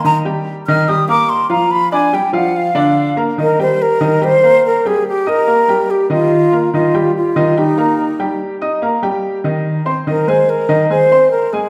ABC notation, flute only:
X:1
M:4/4
L:1/8
Q:1/4=144
K:Cm
V:1 name="Flute"
b z2 f' e' d' c' b | =b a g ^f =f3 z | B c B2 c2 B A | G B3 G F3 |
F2 F2 E4 | z8 | B c B2 c2 B A |]